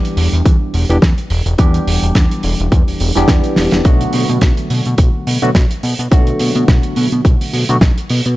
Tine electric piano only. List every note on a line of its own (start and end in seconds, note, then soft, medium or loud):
0.00 0.85 E3 medium
0.00 0.86 G3 medium
0.00 0.86 B3 medium
0.00 0.86 D4 medium
0.00 0.86 G4 medium
0.89 0.96 E3 medium
0.89 0.96 G3 medium
0.89 0.96 B3 medium
0.89 0.97 D4 medium
0.89 0.97 G4 medium
1.58 3.12 E3 medium
1.58 3.12 G3 medium
1.58 3.12 B3 medium
1.58 3.13 D4 medium
1.58 3.13 G4 medium
3.15 3.82 E3 medium
3.15 3.82 G3 medium
3.15 3.82 B3 medium
3.15 3.83 D4 medium
3.15 3.83 G4 medium
3.84 5.38 D3 medium
3.84 5.39 F#3 medium
3.84 5.39 A3 medium
3.84 5.39 B3 medium
3.84 5.39 F#4 medium
5.42 5.49 D3 medium
5.42 5.49 F#3 medium
5.42 5.49 A3 medium
5.42 5.49 B3 medium
5.42 5.49 F#4 medium
6.11 7.65 D3 medium
6.11 7.65 F#3 medium
6.11 7.65 A3 medium
6.11 7.66 B3 medium
6.11 7.66 F#4 medium
7.69 7.76 D3 medium
7.69 7.76 F#3 medium
7.69 7.76 A3 medium
7.69 7.76 B3 medium
7.69 7.76 F#4 loud